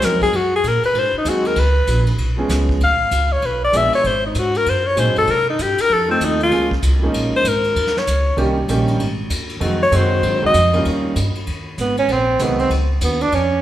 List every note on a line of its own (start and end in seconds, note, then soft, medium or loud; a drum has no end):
0.00 0.32 F2 medium
0.00 0.31 F#3 medium
0.00 0.31 G#3 medium
0.00 0.31 C4 medium
0.00 0.31 D#4 medium
0.00 0.31 G#4 medium
0.00 snare soft
0.00 hi-hat pedal medium
0.00 ride medium
0.05 0.22 A#4 medium
0.21 0.37 G#4 loud
0.21 kick medium
0.21 ride soft
0.32 0.63 F#2 medium
0.32 0.54 F#4 medium
0.32 ride medium
0.55 0.70 G#4 medium
0.64 0.82 A#2 medium
0.64 hi-hat pedal medium
0.64 ride medium
0.68 0.85 A#4 loud
0.83 1.00 B4 loud
0.83 muted upright bass stroke soft
0.83 ride soft
0.94 1.12 G#2 medium
0.94 ride medium
0.99 1.16 C5 loud
1.14 muted upright bass stroke soft
1.18 1.31 D#4 medium
1.25 1.55 D#2 medium
1.25 1.57 F#3 medium
1.25 1.57 G#3 medium
1.25 1.57 C4 medium
1.25 1.57 D#4 medium
1.25 1.58 G#4 medium
1.25 hi-hat pedal medium
1.25 ride medium
1.29 1.48 F#4 medium
1.45 1.61 A#4 loud
1.45 ride soft
1.56 1.87 C#2 medium
1.56 2.09 B4 loud
1.56 ride medium
1.87 2.17 A#1 medium
1.87 hi-hat pedal medium
1.87 ride medium
2.07 ride medium
2.18 2.48 B1 medium
2.18 ride medium
2.37 2.78 F3 medium
2.37 2.78 G#3 medium
2.37 2.79 B3 medium
2.37 2.79 C#4 medium
2.37 2.79 G#4 medium
2.49 2.79 C#2 medium
2.49 snare soft
2.49 hi-hat pedal medium
2.49 ride medium
2.69 kick medium
2.80 2.92 D2 medium
2.80 3.34 F5 medium
2.80 ride medium
2.91 3.00 B1 medium
3.01 3.10 G#1 medium
3.11 3.42 C#2 loud
3.11 hi-hat pedal soft
3.11 ride medium
3.32 3.47 C#5 loud
3.42 3.73 B1 medium
3.42 3.64 B4 medium
3.42 ride medium
3.64 3.78 D5 loud
3.72 3.92 A#1 medium
3.72 4.04 F3 medium
3.72 4.04 G#3 medium
3.72 4.05 B3 medium
3.72 4.05 D4 medium
3.72 4.05 G#4 medium
3.72 hi-hat pedal medium
3.72 ride medium
3.77 3.94 E5 loud
3.93 4.08 C#5 loud
3.93 muted upright bass stroke soft
3.93 ride medium
4.04 4.35 G#1 medium
4.04 4.25 C5 medium
4.04 ride medium
4.26 4.40 D#4 medium
4.35 4.65 G#2 loud
4.35 hi-hat pedal medium
4.35 ride medium
4.39 4.59 F#4 medium
4.55 4.71 A#4 loud
4.55 ride medium
4.66 4.96 F#2 medium
4.66 4.88 C5 medium
4.66 ride medium
4.87 5.01 C#5 loud
4.96 5.07 A#2 loud
4.96 5.28 F#3 medium
4.96 5.28 G#3 medium
4.96 5.29 C4 medium
4.96 5.29 D#4 medium
4.96 5.29 G#4 medium
4.96 5.18 C5 medium
4.96 hi-hat pedal medium
4.96 ride medium
5.07 5.16 G#2 medium
5.16 5.27 F#2 medium
5.16 5.32 A4 loud
5.16 ride soft
5.27 5.58 C3 medium
5.27 5.49 A#4 loud
5.27 ride medium
5.50 5.63 D#4 medium
5.59 5.77 G2 medium
5.59 5.83 G4 loud
5.59 hi-hat pedal medium
5.59 ride medium
5.78 5.94 A#4 loud
5.78 muted upright bass stroke soft
5.78 ride medium
5.90 6.20 F2 medium
5.90 6.10 A4 loud
6.08 6.49 F3 medium
6.08 6.50 A3 medium
6.08 6.50 C4 medium
6.08 6.26 C4 medium
6.08 6.50 D#4 medium
6.08 6.50 A4 medium
6.20 6.51 D#2 medium
6.20 hi-hat pedal medium
6.20 ride medium
6.25 6.43 D#4 medium
6.40 6.71 F4 loud
6.40 ride soft
6.51 6.82 C#2 medium
6.51 6.69 F3 medium
6.51 6.69 G#3 medium
6.51 6.70 A#3 medium
6.51 6.70 C#4 medium
6.51 6.70 G#4 medium
6.51 ride medium
6.71 kick medium
6.82 7.13 C2 loud
6.82 hi-hat pedal medium
6.82 ride medium
7.02 7.43 F3 medium
7.02 7.43 G#3 medium
7.02 7.43 A#3 medium
7.02 7.43 C#4 medium
7.02 7.44 D#4 medium
7.14 7.32 A#1 medium
7.14 ride medium
7.33 7.49 C5 loud
7.33 muted upright bass stroke soft
7.44 7.75 G#1 loud
7.44 8.00 A#4 medium
7.44 hi-hat pedal medium
7.44 ride medium
7.64 ride medium
7.75 8.06 D#2 medium
7.75 ride medium
7.87 snare soft
7.97 8.40 C#5 medium
7.97 snare soft
8.07 8.36 C#2 medium
8.07 hi-hat pedal medium
8.07 ride medium
8.37 8.68 C2 medium
8.37 8.55 D#3 medium
8.37 8.55 G3 medium
8.37 8.55 A#3 medium
8.37 8.56 C#4 medium
8.37 8.56 G4 medium
8.37 ride medium
8.68 8.98 A#1 loud
8.68 9.00 D#3 medium
8.68 9.00 G3 medium
8.68 9.00 A#3 medium
8.68 9.01 C#4 medium
8.68 9.01 G4 medium
8.68 hi-hat pedal medium
8.68 ride medium
8.88 ride medium
8.98 9.29 G#1 medium
8.98 ride medium
9.30 9.60 D#2 loud
9.30 hi-hat pedal medium
9.30 ride medium
9.49 ride medium
9.60 9.91 F2 medium
9.60 9.79 D#3 medium
9.60 9.79 F#3 medium
9.60 9.79 G#3 medium
9.60 9.79 C4 medium
9.60 9.80 F#4 medium
9.60 ride medium
9.83 9.98 C#5 loud
9.92 10.22 F#2 loud
9.92 10.39 D#3 medium
9.92 10.39 F#3 medium
9.92 10.39 G#3 medium
9.92 10.39 C4 medium
9.92 10.39 F#4 medium
9.92 hi-hat pedal medium
9.92 ride medium
9.96 10.45 C5 medium
10.22 10.35 G#2 medium
10.22 ride medium
10.33 10.43 F#2 medium
10.42 10.53 D#2 medium
10.42 10.53 D#3 medium
10.42 10.53 F#3 medium
10.42 10.54 G#3 medium
10.42 10.54 C4 medium
10.42 10.54 F#4 medium
10.46 10.84 D#5 loud
10.54 10.84 F2 loud
10.54 hi-hat pedal medium
10.54 ride medium
10.73 11.14 D#3 medium
10.73 11.14 G3 medium
10.73 11.15 A#3 medium
10.73 11.15 C#4 medium
10.73 11.15 F4 medium
10.73 ride medium
10.85 11.15 D#2 medium
10.85 ride medium
11.16 11.34 G2 loud
11.16 hi-hat pedal medium
11.16 ride medium
11.35 muted upright bass stroke soft
11.35 ride medium
11.47 11.77 D#2 medium
11.47 ride medium
11.78 12.08 G#1 medium
11.78 11.98 B3 medium
11.78 hi-hat pedal medium
11.78 ride medium
11.97 12.14 C#4 loud
11.97 ride medium
12.08 12.39 A#1 medium
12.08 ride medium
12.12 12.44 C4 medium
12.39 12.69 C2 medium
12.39 12.71 D#3 medium
12.39 12.71 F#3 medium
12.39 12.71 G#3 medium
12.39 12.61 B3 medium
12.39 12.72 C4 medium
12.39 12.72 F#4 medium
12.39 hi-hat pedal medium
12.39 ride medium
12.59 12.71 C4 medium
12.59 ride soft
12.70 13.00 C#2 medium
12.70 ride medium
13.01 13.31 D#2 medium
13.01 13.23 B3 medium
13.01 hi-hat pedal medium
13.01 ride medium
13.21 13.36 D4 loud
13.21 ride soft
13.32 13.62 F2 medium
13.32 13.62 C#4 medium
13.32 ride medium